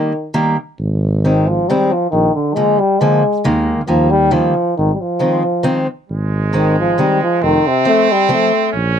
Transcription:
0.00 0.11 D#3 medium
0.00 0.31 D#3 medium
0.00 0.11 G3 soft
0.00 0.12 A#3 medium
0.34 0.56 D#3 medium
0.34 0.56 G3 medium
0.34 0.56 A#3 medium
0.79 1.66 G#1 medium
1.24 1.50 D#3 medium
1.24 1.46 D#3 soft
1.24 1.47 G#3 medium
1.24 1.46 C4 medium
1.48 1.70 F3 medium
1.69 1.91 D#3 medium
1.69 1.93 G3 medium
1.69 1.91 G#3 medium
1.69 1.91 C4 medium
1.92 2.10 F3 medium
2.11 2.28 A#1 medium
2.11 2.34 D#3 medium
2.35 2.56 D3 medium
2.54 2.78 D3 soft
2.54 2.78 F3 soft
2.54 2.80 G#3 medium
2.54 2.78 A#3 medium
2.79 3.01 G3 loud
3.00 3.22 D3 medium
3.00 3.22 F3 medium
3.00 3.44 G#3 medium
3.00 3.22 A#3 medium
3.44 3.74 D#2 medium
3.44 3.80 D#3 medium
3.44 3.80 G#3 medium
3.44 3.80 A#3 medium
3.87 4.46 D#2 medium
3.87 4.09 D#3 medium
3.87 4.12 F3 loud
3.87 4.09 G3 soft
3.87 4.09 A#3 medium
4.10 4.34 G3 loud
4.31 4.53 D#3 medium
4.31 4.76 F3 medium
4.31 4.53 G3 medium
4.31 4.53 A#3 medium
4.77 4.93 G#1 medium
4.77 4.92 D#3 medium
4.94 5.02 G3 medium
5.01 5.90 F3 medium
5.19 5.42 D#3 medium
5.19 5.42 G#3 medium
5.19 5.42 C4 medium
5.63 5.86 D#3 medium
5.63 5.86 G#3 medium
5.63 5.86 C4 medium
6.08 6.96 G#1 medium
6.08 7.43 G#3 medium
6.53 6.75 D#3 medium
6.53 6.76 D#3 medium
6.53 6.75 G#3 soft
6.53 6.75 C4 medium
6.79 7.01 F3 medium
6.98 7.20 D#3 medium
6.98 7.22 G3 medium
6.98 7.20 G#3 medium
6.98 7.20 C4 medium
7.23 7.45 F3 medium
7.41 7.58 F1 medium
7.41 7.69 D#3 medium
7.41 8.72 C4 loud
7.67 7.87 C3 medium
7.85 8.07 F3 medium
7.85 8.07 A3 medium
7.85 8.13 A3 loud
7.85 8.07 C4 medium
8.12 8.31 G3 loud
8.29 8.50 F3 medium
8.29 8.50 A3 medium
8.29 8.51 C4 medium
8.33 8.72 A3 medium
8.72 8.99 A#1 medium
8.72 8.99 C#4 loud

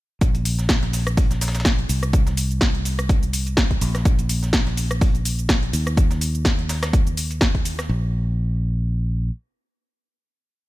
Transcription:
0.21 1.87 A#1 medium
0.21 kick loud
0.21 closed hi-hat medium
0.21 shaker soft
0.35 closed hi-hat soft
0.35 shaker soft
0.45 closed hi-hat medium
0.45 open hi-hat loud
0.45 shaker medium
0.59 snare soft
0.59 closed hi-hat soft
0.59 shaker soft
0.69 kick loud
0.69 snare loud
0.69 closed hi-hat medium
0.69 shaker soft
0.83 snare medium
0.83 closed hi-hat soft
0.93 snare soft
0.93 closed hi-hat medium
0.93 open hi-hat medium
0.93 shaker medium
1.07 cross-stick medium
1.07 closed hi-hat soft
1.07 shaker soft
1.17 kick loud
1.17 closed hi-hat medium
1.17 open hi-hat medium
1.17 shaker soft
1.31 snare soft
1.31 closed hi-hat soft
1.31 shaker soft
1.41 snare medium
1.41 closed hi-hat medium
1.41 open hi-hat medium
1.41 shaker medium
1.48 snare medium
1.48 closed hi-hat medium
1.55 snare medium
1.55 closed hi-hat medium
1.55 closed hi-hat soft
1.55 shaker soft
1.60 snare medium
1.60 closed hi-hat medium
1.65 kick loud
1.65 snare loud
1.65 closed hi-hat medium
1.65 shaker soft
1.79 closed hi-hat soft
1.89 3.79 C2 medium
1.89 closed hi-hat medium
1.89 open hi-hat medium
1.89 shaker medium
2.03 cross-stick medium
2.03 closed hi-hat soft
2.03 shaker soft
2.13 kick loud
2.13 closed hi-hat medium
2.13 shaker soft
2.27 snare soft
2.27 closed hi-hat soft
2.27 shaker soft
2.37 closed hi-hat medium
2.37 open hi-hat loud
2.37 shaker medium
2.51 closed hi-hat soft
2.51 shaker soft
2.61 kick loud
2.61 snare loud
2.61 closed hi-hat medium
2.61 shaker soft
2.75 closed hi-hat soft
2.85 closed hi-hat medium
2.85 open hi-hat medium
2.85 shaker medium
2.99 cross-stick medium
2.99 closed hi-hat soft
2.99 shaker soft
3.09 kick loud
3.09 closed hi-hat medium
3.09 shaker soft
3.23 closed hi-hat soft
3.23 shaker soft
3.33 closed hi-hat medium
3.33 open hi-hat loud
3.33 shaker medium
3.47 closed hi-hat soft
3.47 shaker soft
3.57 kick loud
3.57 snare loud
3.57 closed hi-hat medium
3.57 shaker soft
3.71 kick medium
3.71 closed hi-hat soft
3.81 5.71 A#1 medium
3.81 closed hi-hat medium
3.81 open hi-hat medium
3.81 shaker medium
3.95 cross-stick medium
3.95 snare medium
3.95 closed hi-hat soft
3.95 shaker soft
4.05 kick loud
4.05 closed hi-hat medium
4.05 shaker soft
4.19 closed hi-hat soft
4.19 shaker soft
4.29 closed hi-hat medium
4.29 open hi-hat loud
4.29 shaker medium
4.43 snare soft
4.43 closed hi-hat soft
4.43 shaker soft
4.53 kick loud
4.53 snare loud
4.53 closed hi-hat medium
4.53 shaker soft
4.67 snare medium
4.67 closed hi-hat soft
4.77 closed hi-hat medium
4.77 open hi-hat loud
4.77 shaker medium
4.91 cross-stick medium
4.91 closed hi-hat soft
4.91 shaker soft
5.01 kick loud
5.01 closed hi-hat medium
5.01 open hi-hat medium
5.01 shaker soft
5.15 closed hi-hat soft
5.15 shaker soft
5.25 closed hi-hat medium
5.25 open hi-hat loud
5.25 shaker medium
5.39 closed hi-hat soft
5.39 shaker soft
5.49 kick loud
5.49 snare loud
5.49 closed hi-hat medium
5.49 shaker soft
5.63 closed hi-hat soft
5.73 7.87 D#2 medium
5.73 closed hi-hat medium
5.73 open hi-hat loud
5.73 shaker medium
5.87 cross-stick medium
5.87 closed hi-hat soft
5.87 shaker soft
5.97 kick loud
5.97 closed hi-hat medium
5.97 shaker soft
6.11 snare soft
6.11 closed hi-hat soft
6.11 shaker soft
6.21 closed hi-hat medium
6.21 open hi-hat loud
6.21 shaker medium
6.35 closed hi-hat soft
6.35 shaker soft
6.45 kick loud
6.45 snare loud
6.45 closed hi-hat medium
6.45 shaker soft
6.59 closed hi-hat soft
6.69 snare loud
6.69 closed hi-hat medium
6.69 open hi-hat medium
6.69 shaker medium
6.83 cross-stick medium
6.83 snare loud
6.83 closed hi-hat medium
6.83 closed hi-hat soft
6.83 shaker soft
6.93 kick loud
6.93 closed hi-hat medium
6.93 shaker soft
7.07 closed hi-hat soft
7.07 shaker soft
7.17 closed hi-hat medium
7.17 open hi-hat loud
7.17 shaker medium
7.31 closed hi-hat soft
7.31 shaker soft
7.41 kick loud
7.41 snare loud
7.41 closed hi-hat medium
7.41 shaker soft
7.55 kick medium
7.55 closed hi-hat soft
7.65 closed hi-hat medium
7.65 open hi-hat medium
7.65 shaker medium
7.79 cross-stick medium
7.79 snare medium
7.79 closed hi-hat soft
7.79 shaker soft
7.89 9.29 A#1 loud

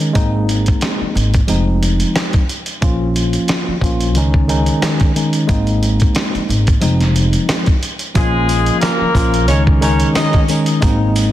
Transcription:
0.00 0.12 D#3 medium
0.00 0.12 G#3 medium
0.00 0.13 C#4 medium
0.00 0.14 D#4 medium
0.13 0.68 G#1 loud
0.13 1.38 G#3 loud
0.13 1.39 A#3 medium
0.13 1.39 C4 medium
0.13 1.39 D#4 loud
0.13 kick loud
0.13 closed hi-hat medium
0.49 closed hi-hat medium
0.66 kick medium
0.66 closed hi-hat soft
0.81 snare loud
0.81 snare medium
0.81 closed hi-hat medium
1.01 muted upright bass stroke soft
1.15 1.42 G#1 loud
1.15 closed hi-hat medium
1.34 kick medium
1.34 closed hi-hat medium
1.47 2.01 F1 loud
1.47 2.41 F3 medium
1.47 2.41 G#3 medium
1.47 2.42 C4 medium
1.47 2.42 D#4 medium
1.47 closed hi-hat loud
1.83 closed hi-hat medium
2.00 closed hi-hat medium
2.16 snare loud
2.16 snare medium
2.16 closed hi-hat medium
2.33 kick medium
2.33 closed hi-hat soft
2.49 closed hi-hat medium
2.66 closed hi-hat medium
2.81 3.35 A#1 loud
2.81 3.75 F3 medium
2.81 3.75 A#3 medium
2.81 3.75 C#4 medium
2.81 3.76 F4 loud
2.81 kick loud
2.81 closed hi-hat medium
3.16 closed hi-hat medium
3.33 closed hi-hat soft
3.48 snare loud
3.48 snare medium
3.48 closed hi-hat medium
3.68 muted upright bass stroke soft
3.81 4.16 A#1 medium
3.81 4.15 F3 medium
3.81 4.15 A#3 medium
3.81 4.16 C#4 medium
3.81 4.16 F4 loud
3.81 kick medium
3.81 closed hi-hat medium
4.00 closed hi-hat medium
4.15 4.68 C#2 loud
4.15 4.46 D#3 medium
4.15 4.47 G#3 medium
4.15 4.47 C#4 medium
4.15 4.48 D#4 loud
4.15 closed hi-hat loud
4.34 kick medium
4.48 5.10 D#3 medium
4.48 5.11 G#3 medium
4.48 5.11 C#4 medium
4.48 5.11 D#4 loud
4.48 closed hi-hat medium
4.66 closed hi-hat medium
4.82 snare loud
4.82 snare medium
4.82 closed hi-hat medium
5.00 kick medium
5.00 closed hi-hat soft
5.15 5.46 D#3 medium
5.15 5.46 G#3 medium
5.15 5.47 C#4 medium
5.15 5.47 D#4 medium
5.15 closed hi-hat medium
5.33 closed hi-hat medium
5.47 6.02 G#1 loud
5.47 6.72 G#3 medium
5.47 6.72 A#3 medium
5.47 6.73 C4 medium
5.47 6.73 D#4 loud
5.47 kick loud
5.47 closed hi-hat medium
5.67 closed hi-hat soft
5.83 closed hi-hat medium
6.00 kick medium
6.00 closed hi-hat soft
6.15 snare loud
6.15 snare medium
6.15 closed hi-hat medium
6.34 muted upright bass stroke soft
6.34 closed hi-hat soft
6.49 6.75 G#1 loud
6.49 closed hi-hat medium
6.67 kick medium
6.67 closed hi-hat medium
6.80 7.35 F1 loud
6.80 7.74 F3 medium
6.80 7.75 G#3 medium
6.80 7.75 C4 medium
6.80 7.75 D#4 medium
6.80 closed hi-hat loud
7.00 snare soft
7.00 closed hi-hat soft
7.16 closed hi-hat medium
7.33 closed hi-hat medium
7.49 snare loud
7.49 snare medium
7.49 closed hi-hat medium
7.66 kick medium
7.66 closed hi-hat soft
7.83 closed hi-hat medium
7.99 closed hi-hat medium
8.14 8.68 A#1 loud
8.14 9.08 F3 medium
8.14 8.79 G#3 loud
8.14 9.08 A#3 medium
8.14 9.09 C#4 medium
8.14 9.09 F4 loud
8.14 8.79 G#4 loud
8.14 kick loud
8.14 closed hi-hat medium
8.14 sleigh bells medium
8.49 closed hi-hat medium
8.49 sleigh bells medium
8.66 closed hi-hat soft
8.81 9.44 A#3 loud
8.81 9.44 A#4 loud
8.81 snare loud
8.81 snare medium
8.81 closed hi-hat medium
8.81 sleigh bells medium
9.01 muted upright bass stroke soft
9.14 9.49 A#1 loud
9.14 9.48 F3 medium
9.14 9.49 A#3 medium
9.14 9.49 C#4 medium
9.14 9.49 F4 loud
9.14 kick medium
9.14 closed hi-hat medium
9.14 sleigh bells medium
9.34 closed hi-hat medium
9.48 10.02 C#2 loud
9.48 9.79 D#3 medium
9.48 9.80 G#3 medium
9.48 9.63 C#4 medium
9.48 9.80 C#4 medium
9.48 9.81 D#4 loud
9.48 9.63 C#5 medium
9.48 closed hi-hat loud
9.48 sleigh bells soft
9.67 kick loud
9.81 10.43 D#3 loud
9.81 10.44 G#3 medium
9.81 10.44 C#4 loud
9.81 10.09 C#4 medium
9.81 10.44 D#4 loud
9.81 10.09 C#5 medium
9.81 closed hi-hat medium
9.81 sleigh bells medium
10.00 closed hi-hat medium
10.15 10.42 D#4 loud
10.15 10.42 D#5 loud
10.15 snare loud
10.15 closed hi-hat medium
10.15 sleigh bells medium
10.33 kick medium
10.33 closed hi-hat soft
10.48 10.79 D#3 medium
10.48 10.79 G#3 medium
10.48 10.80 C#4 medium
10.48 10.80 D#4 medium
10.48 closed hi-hat medium
10.48 sleigh bells medium
10.66 closed hi-hat medium
10.81 11.32 G#1 loud
10.81 11.32 G#3 loud
10.81 11.32 A#3 medium
10.81 11.32 C4 medium
10.81 11.32 D#4 loud
10.81 kick loud
10.81 closed hi-hat medium
10.81 sleigh bells medium
11.15 closed hi-hat medium
11.15 sleigh bells medium

